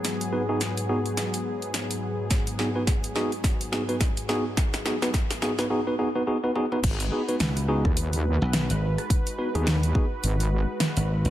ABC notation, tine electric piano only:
X:1
M:4/4
L:1/16
Q:"Swing 16ths" 1/4=106
K:G#m
V:1 name="Tine electric piano"
z2 [B,DFB] [B,DFG] z2 [B,DFG] z8 z | z2 [B,DFG] [B,DFB] z2 [B,DFG] z3 [B,DFG] [B,DFB] z2 [B,DFG] z | z2 [B,DFG] [B,DFB] z2 [B,DFG] [B,DFB] [B,DFG] [B,DFB] [B,DFG] [B,DFB] [B,DFG] [B,DFB] [B,DFG] [B,DFB] | z2 [B,DFG] [B,DFB] z2 [B,DFG] z8 z |
z2 [B,DFB] [B,DFG] z2 [B,DFG] z8 z |]